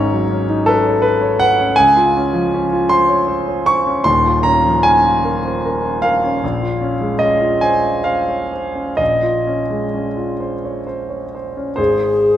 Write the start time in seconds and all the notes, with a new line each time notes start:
Already playing: G#1 G#2 C#4 D#4 C#5
0.13 F#3
0.31 C#4
0.49 D#4
0.66 A4 B4
0.87 C#5
1.02 B4
1.21 C#5
1.40 B4 F#5
1.59 C#4
1.76 C#2 G#5
1.97 F4
2.17 C#4
2.33 F3
2.54 C#4
2.73 F4
2.89 C5 C6
3.09 C#5
3.28 C5
3.48 C#5
3.66 C5 C#6
3.87 C#4
4.04 D#1 D#2 C6
4.26 F4
4.43 C#4 A#5
4.65 F3
4.83 C#4 G#5
5.06 F4
5.24 A#4
5.45 C5
5.65 A#4
5.84 C5
6.02 A#4 F5
6.23 C#4
6.44 A#1
6.62 F4
6.81 C#4
7.01 G#3
7.19 C#4 D#5
7.41 F4
7.61 C5 G#5
7.84 C#5
8.04 C5 F5
8.29 C#5
8.53 C5
8.75 C#4
8.97 A#1 D#5
9.23 F4
9.47 C#4
9.70 G#3
9.94 C#4
10.17 F4
10.40 C5
10.65 C#5
10.87 C5
11.09 C#5
11.35 C5
11.57 C#4
11.76 G#1 G#4 C5